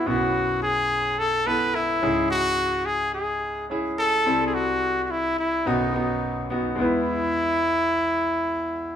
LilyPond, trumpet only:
\new Staff \with { instrumentName = "Trumpet" } { \time 4/4 \key e \major \tempo 4 = 107 fis'4 gis'4 a'8 b'8 e'4 | fis'4 gis'8 gis'4 r8 a'8.~ a'32 gis'32 | fis'8.~ fis'32 fis'32 e'8 e'8 dis'4. r8 | e'1 | }